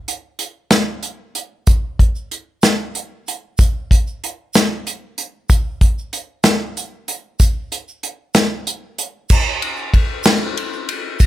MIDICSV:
0, 0, Header, 1, 2, 480
1, 0, Start_track
1, 0, Tempo, 634921
1, 1265, Time_signature, 6, 3, 24, 8
1, 8516, End_track
2, 0, Start_track
2, 0, Title_t, "Drums"
2, 60, Note_on_c, 9, 42, 68
2, 136, Note_off_c, 9, 42, 0
2, 293, Note_on_c, 9, 42, 78
2, 369, Note_off_c, 9, 42, 0
2, 533, Note_on_c, 9, 42, 84
2, 535, Note_on_c, 9, 38, 107
2, 609, Note_off_c, 9, 42, 0
2, 610, Note_off_c, 9, 38, 0
2, 775, Note_on_c, 9, 42, 63
2, 851, Note_off_c, 9, 42, 0
2, 1021, Note_on_c, 9, 42, 67
2, 1097, Note_off_c, 9, 42, 0
2, 1261, Note_on_c, 9, 42, 88
2, 1264, Note_on_c, 9, 82, 84
2, 1265, Note_on_c, 9, 36, 104
2, 1337, Note_off_c, 9, 42, 0
2, 1339, Note_off_c, 9, 82, 0
2, 1341, Note_off_c, 9, 36, 0
2, 1507, Note_on_c, 9, 36, 81
2, 1510, Note_on_c, 9, 42, 65
2, 1583, Note_off_c, 9, 36, 0
2, 1586, Note_off_c, 9, 42, 0
2, 1628, Note_on_c, 9, 82, 25
2, 1704, Note_off_c, 9, 82, 0
2, 1749, Note_on_c, 9, 42, 70
2, 1825, Note_off_c, 9, 42, 0
2, 1984, Note_on_c, 9, 82, 94
2, 1988, Note_on_c, 9, 42, 85
2, 1989, Note_on_c, 9, 38, 102
2, 2059, Note_off_c, 9, 82, 0
2, 2064, Note_off_c, 9, 42, 0
2, 2065, Note_off_c, 9, 38, 0
2, 2227, Note_on_c, 9, 82, 29
2, 2230, Note_on_c, 9, 42, 61
2, 2303, Note_off_c, 9, 82, 0
2, 2306, Note_off_c, 9, 42, 0
2, 2472, Note_on_c, 9, 82, 33
2, 2480, Note_on_c, 9, 42, 70
2, 2548, Note_off_c, 9, 82, 0
2, 2556, Note_off_c, 9, 42, 0
2, 2707, Note_on_c, 9, 82, 106
2, 2714, Note_on_c, 9, 36, 105
2, 2715, Note_on_c, 9, 42, 93
2, 2783, Note_off_c, 9, 82, 0
2, 2789, Note_off_c, 9, 36, 0
2, 2791, Note_off_c, 9, 42, 0
2, 2955, Note_on_c, 9, 36, 79
2, 2960, Note_on_c, 9, 42, 70
2, 3031, Note_off_c, 9, 36, 0
2, 3035, Note_off_c, 9, 42, 0
2, 3077, Note_on_c, 9, 82, 30
2, 3153, Note_off_c, 9, 82, 0
2, 3203, Note_on_c, 9, 42, 71
2, 3278, Note_off_c, 9, 42, 0
2, 3433, Note_on_c, 9, 82, 100
2, 3442, Note_on_c, 9, 42, 95
2, 3443, Note_on_c, 9, 38, 113
2, 3509, Note_off_c, 9, 82, 0
2, 3517, Note_off_c, 9, 42, 0
2, 3519, Note_off_c, 9, 38, 0
2, 3678, Note_on_c, 9, 82, 28
2, 3680, Note_on_c, 9, 42, 75
2, 3754, Note_off_c, 9, 82, 0
2, 3755, Note_off_c, 9, 42, 0
2, 3915, Note_on_c, 9, 42, 76
2, 3918, Note_on_c, 9, 82, 29
2, 3990, Note_off_c, 9, 42, 0
2, 3994, Note_off_c, 9, 82, 0
2, 4155, Note_on_c, 9, 36, 115
2, 4155, Note_on_c, 9, 42, 93
2, 4156, Note_on_c, 9, 82, 91
2, 4231, Note_off_c, 9, 36, 0
2, 4231, Note_off_c, 9, 42, 0
2, 4232, Note_off_c, 9, 82, 0
2, 4394, Note_on_c, 9, 36, 80
2, 4394, Note_on_c, 9, 42, 74
2, 4469, Note_off_c, 9, 42, 0
2, 4470, Note_off_c, 9, 36, 0
2, 4525, Note_on_c, 9, 82, 29
2, 4600, Note_off_c, 9, 82, 0
2, 4633, Note_on_c, 9, 42, 74
2, 4709, Note_off_c, 9, 42, 0
2, 4866, Note_on_c, 9, 42, 93
2, 4868, Note_on_c, 9, 38, 111
2, 4869, Note_on_c, 9, 82, 98
2, 4942, Note_off_c, 9, 42, 0
2, 4944, Note_off_c, 9, 38, 0
2, 4945, Note_off_c, 9, 82, 0
2, 5118, Note_on_c, 9, 42, 64
2, 5119, Note_on_c, 9, 82, 30
2, 5193, Note_off_c, 9, 42, 0
2, 5195, Note_off_c, 9, 82, 0
2, 5353, Note_on_c, 9, 42, 69
2, 5355, Note_on_c, 9, 82, 31
2, 5428, Note_off_c, 9, 42, 0
2, 5431, Note_off_c, 9, 82, 0
2, 5592, Note_on_c, 9, 42, 91
2, 5593, Note_on_c, 9, 36, 100
2, 5594, Note_on_c, 9, 82, 105
2, 5668, Note_off_c, 9, 42, 0
2, 5669, Note_off_c, 9, 36, 0
2, 5669, Note_off_c, 9, 82, 0
2, 5835, Note_on_c, 9, 42, 65
2, 5838, Note_on_c, 9, 82, 33
2, 5910, Note_off_c, 9, 42, 0
2, 5914, Note_off_c, 9, 82, 0
2, 5960, Note_on_c, 9, 82, 32
2, 6036, Note_off_c, 9, 82, 0
2, 6072, Note_on_c, 9, 42, 72
2, 6148, Note_off_c, 9, 42, 0
2, 6309, Note_on_c, 9, 42, 96
2, 6310, Note_on_c, 9, 82, 115
2, 6311, Note_on_c, 9, 38, 108
2, 6385, Note_off_c, 9, 42, 0
2, 6386, Note_off_c, 9, 82, 0
2, 6387, Note_off_c, 9, 38, 0
2, 6554, Note_on_c, 9, 42, 73
2, 6560, Note_on_c, 9, 82, 34
2, 6629, Note_off_c, 9, 42, 0
2, 6635, Note_off_c, 9, 82, 0
2, 6792, Note_on_c, 9, 42, 71
2, 6867, Note_off_c, 9, 42, 0
2, 7029, Note_on_c, 9, 82, 97
2, 7030, Note_on_c, 9, 49, 118
2, 7032, Note_on_c, 9, 36, 108
2, 7105, Note_off_c, 9, 49, 0
2, 7105, Note_off_c, 9, 82, 0
2, 7107, Note_off_c, 9, 36, 0
2, 7272, Note_on_c, 9, 82, 30
2, 7274, Note_on_c, 9, 51, 73
2, 7348, Note_off_c, 9, 82, 0
2, 7350, Note_off_c, 9, 51, 0
2, 7382, Note_on_c, 9, 82, 30
2, 7458, Note_off_c, 9, 82, 0
2, 7512, Note_on_c, 9, 36, 83
2, 7513, Note_on_c, 9, 51, 80
2, 7587, Note_off_c, 9, 36, 0
2, 7589, Note_off_c, 9, 51, 0
2, 7738, Note_on_c, 9, 82, 95
2, 7752, Note_on_c, 9, 51, 109
2, 7754, Note_on_c, 9, 38, 114
2, 7814, Note_off_c, 9, 82, 0
2, 7828, Note_off_c, 9, 51, 0
2, 7830, Note_off_c, 9, 38, 0
2, 7862, Note_on_c, 9, 82, 27
2, 7938, Note_off_c, 9, 82, 0
2, 7994, Note_on_c, 9, 51, 77
2, 8069, Note_off_c, 9, 51, 0
2, 8112, Note_on_c, 9, 82, 32
2, 8188, Note_off_c, 9, 82, 0
2, 8230, Note_on_c, 9, 51, 79
2, 8306, Note_off_c, 9, 51, 0
2, 8465, Note_on_c, 9, 82, 96
2, 8468, Note_on_c, 9, 36, 110
2, 8470, Note_on_c, 9, 51, 97
2, 8516, Note_off_c, 9, 36, 0
2, 8516, Note_off_c, 9, 51, 0
2, 8516, Note_off_c, 9, 82, 0
2, 8516, End_track
0, 0, End_of_file